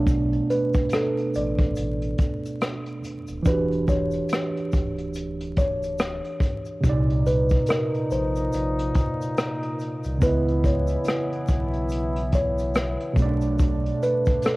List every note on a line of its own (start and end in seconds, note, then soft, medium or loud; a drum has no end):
0.00 0.39 B1 medium
0.00 2.98 B2 medium
0.00 2.99 A3 medium
0.00 3.01 B3 medium
0.00 3.02 D4 medium
0.06 kick loud
0.06 closed hi-hat medium
0.06 shaker medium
0.33 closed hi-hat soft
0.50 0.88 B4 medium
0.50 closed hi-hat medium
0.50 shaker soft
0.74 kick loud
0.74 closed hi-hat soft
0.74 shaker medium
0.89 cross-stick loud
0.89 closed hi-hat medium
0.89 shaker medium
0.93 1.31 A4 medium
1.18 closed hi-hat soft
1.34 1.72 A1 medium
1.34 1.98 D5 medium
1.34 closed hi-hat medium
1.34 shaker medium
1.59 kick loud
1.59 closed hi-hat soft
1.76 2.14 A1 loud
1.76 closed hi-hat medium
1.76 shaker medium
2.02 closed hi-hat medium
2.18 kick loud
2.18 closed hi-hat medium
2.18 shaker medium
2.45 closed hi-hat soft
2.45 shaker soft
2.61 cross-stick loud
2.61 closed hi-hat medium
2.61 shaker medium
2.86 closed hi-hat soft
3.04 closed hi-hat medium
3.04 shaker soft
3.27 3.44 D#1 medium
3.27 closed hi-hat soft
3.27 shaker soft
3.43 4.20 E1 loud
3.43 6.78 E3 medium
3.43 6.80 D4 medium
3.43 kick loud
3.43 closed hi-hat medium
3.43 shaker medium
3.47 6.81 F#4 medium
3.47 3.85 B4 medium
3.51 6.82 G4 medium
3.72 closed hi-hat soft
3.88 4.52 C#5 medium
3.88 kick medium
3.88 closed hi-hat medium
3.88 shaker medium
4.11 closed hi-hat soft
4.11 shaker medium
4.29 cross-stick loud
4.29 closed hi-hat medium
4.29 shaker medium
4.57 closed hi-hat soft
4.72 6.20 D1 loud
4.72 kick medium
4.72 closed hi-hat medium
4.72 shaker medium
4.98 closed hi-hat soft
5.14 closed hi-hat medium
5.14 shaker medium
5.41 closed hi-hat medium
5.57 6.21 C#5 medium
5.57 kick medium
5.57 closed hi-hat medium
5.57 shaker soft
5.83 closed hi-hat soft
5.83 shaker soft
5.99 cross-stick loud
5.99 closed hi-hat medium
5.99 shaker medium
6.25 closed hi-hat soft
6.40 kick loud
6.40 closed hi-hat medium
6.40 shaker soft
6.65 closed hi-hat soft
6.65 shaker soft
6.81 7.58 C2 loud
6.81 10.17 A#2 medium
6.81 10.19 A#2 medium
6.81 10.16 C3 medium
6.81 kick loud
6.81 closed hi-hat medium
6.81 shaker medium
6.85 10.19 D#4 medium
6.89 10.20 D5 medium
7.10 closed hi-hat soft
7.26 7.64 B4 medium
7.26 closed hi-hat medium
7.26 shaker soft
7.49 kick medium
7.49 closed hi-hat soft
7.49 shaker medium
7.66 8.07 A#4 loud
7.66 cross-stick loud
7.66 closed hi-hat medium
7.66 shaker medium
7.94 closed hi-hat soft
8.11 8.48 A#1 loud
8.11 8.74 C5 medium
8.11 closed hi-hat medium
8.11 shaker soft
8.36 closed hi-hat soft
8.36 shaker soft
8.53 8.91 A#1 medium
8.53 closed hi-hat medium
8.53 shaker medium
8.79 closed hi-hat medium
8.94 kick medium
8.94 closed hi-hat medium
8.94 shaker soft
9.21 closed hi-hat soft
9.21 shaker soft
9.37 cross-stick loud
9.37 closed hi-hat medium
9.37 shaker medium
9.63 closed hi-hat soft
9.79 closed hi-hat medium
9.79 shaker soft
10.04 10.20 C2 medium
10.04 closed hi-hat soft
10.04 shaker soft
10.18 13.12 C#3 medium
10.18 13.13 B3 medium
10.18 13.15 E4 medium
10.18 kick loud
10.18 shaker medium
10.22 10.96 C#2 loud
10.22 13.15 E3 medium
10.22 13.15 B3 medium
10.22 13.14 E4 medium
10.22 10.60 B4 medium
10.22 closed hi-hat medium
10.27 13.16 D#5 medium
10.48 closed hi-hat soft
10.64 11.28 C#5 medium
10.64 kick medium
10.64 closed hi-hat medium
10.64 shaker medium
10.87 closed hi-hat soft
10.87 shaker medium
11.04 cross-stick loud
11.04 closed hi-hat medium
11.04 shaker medium
11.32 closed hi-hat soft
11.48 12.96 B1 medium
11.48 kick medium
11.48 closed hi-hat medium
11.48 shaker medium
11.73 closed hi-hat soft
11.89 closed hi-hat medium
11.89 shaker medium
12.16 closed hi-hat medium
12.32 12.97 C#5 medium
12.32 kick loud
12.32 closed hi-hat medium
12.32 shaker medium
12.58 closed hi-hat soft
12.58 shaker soft
12.75 cross-stick loud
12.75 closed hi-hat medium
12.75 shaker medium
13.00 closed hi-hat soft
13.13 13.92 B1 loud
13.13 14.57 B2 medium
13.13 14.57 D3 medium
13.13 14.57 A3 medium
13.13 14.57 D4 medium
13.13 kick loud
13.13 shaker soft
13.19 13.26 C#4 medium
13.19 14.57 D5 medium
13.19 closed hi-hat medium
13.26 14.57 D4 medium
13.41 closed hi-hat soft
13.41 shaker soft
13.59 kick loud
13.59 closed hi-hat medium
13.59 shaker medium
13.86 closed hi-hat soft
14.02 14.41 B4 medium
14.02 closed hi-hat medium
14.02 shaker medium
14.25 kick loud
14.25 closed hi-hat soft
14.25 shaker medium
14.42 14.57 A4 medium
14.42 cross-stick loud
14.42 closed hi-hat medium
14.42 shaker medium